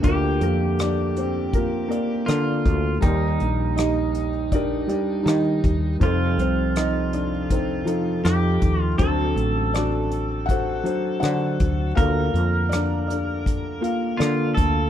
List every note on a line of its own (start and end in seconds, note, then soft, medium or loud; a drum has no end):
0.00 2.97 D2 medium
0.00 2.97 D3 soft
0.00 0.07 A#3 medium
0.00 0.10 F#4 medium
0.00 0.06 A#4 medium
0.00 0.79 D5 medium
0.00 closed hi-hat medium
0.04 0.39 D2 medium
0.04 0.41 F4 medium
0.04 2.35 G4 medium
0.04 0.41 A#4 medium
0.04 kick medium
0.08 0.41 A#3 medium
0.41 1.86 F2 medium
0.41 0.78 A#3 medium
0.41 0.81 A#4 medium
0.41 closed hi-hat soft
0.79 1.15 D5 medium
0.79 cross-stick medium
0.79 closed hi-hat medium
0.83 1.16 D4 medium
1.16 1.53 C4 medium
1.16 1.52 C5 medium
1.16 closed hi-hat soft
1.53 1.87 A#3 soft
1.53 2.26 F4 soft
1.53 1.88 A#4 medium
1.53 kick medium
1.53 closed hi-hat medium
1.88 2.21 A#3 medium
1.88 2.22 A#4 medium
1.88 2.23 D5 medium
1.88 closed hi-hat medium
2.26 2.63 D3 medium
2.26 2.91 A#3 medium
2.26 2.98 F4 medium
2.26 2.92 A4 medium
2.26 2.92 D5 medium
2.26 cross-stick medium
2.26 closed hi-hat medium
2.66 3.00 D2 medium
2.66 kick medium
2.66 closed hi-hat medium
3.00 5.96 D#2 medium
3.00 3.37 D#2 medium
3.00 5.96 D#3 medium
3.00 4.30 G3 medium
3.00 3.77 D#4 medium
3.00 5.97 D#4 medium
3.00 3.74 G4 medium
3.00 4.30 A#4 medium
3.00 3.74 D5 medium
3.00 3.79 G5 loud
3.00 kick medium
3.00 closed hi-hat medium
3.40 4.86 A#1 medium
3.40 closed hi-hat soft
3.76 4.48 D#4 medium
3.76 4.48 G4 medium
3.76 4.53 D#5 medium
3.76 cross-stick medium
3.76 closed hi-hat medium
4.14 closed hi-hat soft
4.52 4.88 D4 medium
4.52 4.87 G4 medium
4.52 4.88 A#4 medium
4.52 4.88 D5 medium
4.52 kick medium
4.52 closed hi-hat medium
4.87 5.20 G3 medium
4.87 5.21 G4 medium
4.87 5.21 D5 medium
4.87 closed hi-hat soft
4.92 5.25 D4 medium
5.23 5.60 D#3 medium
5.23 5.89 G3 medium
5.23 5.26 D#4 medium
5.23 5.90 D#5 medium
5.23 closed hi-hat medium
5.28 5.97 D#4 medium
5.28 5.97 G4 medium
5.28 cross-stick medium
5.64 5.98 D#2 medium
5.64 kick medium
5.64 closed hi-hat soft
6.00 8.95 F1 medium
6.00 8.95 F2 medium
6.00 6.35 F2 medium
6.00 7.28 F3 medium
6.00 6.36 C4 medium
6.00 6.75 D#4 medium
6.00 8.32 F4 medium
6.00 7.29 A4 medium
6.00 6.38 C5 medium
6.00 kick medium
6.00 closed hi-hat medium
6.38 7.83 C2 medium
6.38 6.74 C4 medium
6.38 6.77 C5 medium
6.38 closed hi-hat soft
6.76 7.11 D#4 medium
6.76 7.14 D#5 medium
6.76 cross-stick medium
6.76 closed hi-hat medium
7.13 7.48 D4 soft
7.13 7.51 D5 medium
7.13 closed hi-hat soft
7.50 8.21 C4 soft
7.50 7.85 D#4 soft
7.50 7.85 A4 soft
7.50 8.21 C5 medium
7.50 kick medium
7.50 closed hi-hat medium
7.85 8.18 F3 medium
7.85 8.19 D#4 medium
7.85 8.19 A4 medium
7.85 closed hi-hat medium
8.24 8.58 F2 medium
8.24 8.88 F3 medium
8.24 8.88 D#4 medium
8.24 8.81 G4 medium
8.24 8.89 A4 medium
8.24 cross-stick medium
8.24 closed hi-hat medium
8.62 8.96 D#2 medium
8.62 kick medium
8.62 closed hi-hat medium
8.81 8.98 F4 medium
8.98 11.93 D2 soft
8.98 9.33 D2 medium
8.98 11.93 D3 medium
8.98 10.27 F#3 medium
8.98 9.71 C4 medium
8.98 9.76 D4 medium
8.98 9.70 F#4 medium
8.98 11.93 A4 medium
8.98 9.71 A4 medium
8.98 9.76 C5 medium
8.98 kick medium
8.98 closed hi-hat medium
9.36 10.81 A1 medium
9.36 closed hi-hat soft
9.74 10.46 D4 medium
9.74 10.46 F#4 medium
9.74 10.51 D5 medium
9.74 cross-stick medium
9.74 closed hi-hat medium
10.12 closed hi-hat soft
10.46 11.18 F#5 medium
10.46 kick medium
10.46 closed hi-hat medium
10.50 11.20 F#4 medium
10.50 11.20 A4 medium
10.50 10.84 C5 medium
10.84 11.17 F#3 medium
10.84 11.17 D4 medium
10.84 11.18 C5 medium
10.84 closed hi-hat soft
11.20 11.57 D3 medium
11.20 11.86 F#3 medium
11.20 11.86 D4 medium
11.20 11.87 C5 medium
11.20 11.98 F#5 medium
11.20 cross-stick medium
11.20 closed hi-hat medium
11.25 11.94 F#4 medium
11.60 11.95 D2 medium
11.60 kick medium
11.60 closed hi-hat soft
11.95 14.90 D2 medium
11.95 12.32 D2 medium
11.95 14.90 D3 medium
11.95 13.24 A#3 medium
11.95 11.99 F4 medium
11.95 14.16 A#4 medium
11.95 12.68 D5 medium
11.95 12.73 F5 medium
11.95 kick medium
11.95 closed hi-hat medium
12.00 12.69 F4 medium
12.00 12.69 A4 medium
12.00 12.69 A#4 medium
12.34 13.79 F2 medium
12.34 closed hi-hat soft
12.69 13.06 D5 medium
12.69 cross-stick medium
12.69 closed hi-hat medium
12.75 13.08 D4 medium
13.08 14.54 D4 soft
13.08 14.18 D5 medium
13.08 closed hi-hat soft
13.12 14.17 A4 soft
13.46 kick medium
13.46 closed hi-hat medium
13.81 14.14 A#3 medium
13.81 14.14 F4 medium
13.81 14.15 F5 medium
13.81 closed hi-hat soft
14.17 14.54 D3 medium
14.17 14.83 A#3 medium
14.17 14.53 F4 medium
14.17 14.83 A4 medium
14.17 14.84 D5 medium
14.17 closed hi-hat medium
14.22 cross-stick medium
14.54 14.90 D2 medium
14.54 14.90 A4 loud
14.54 kick medium
14.54 closed hi-hat medium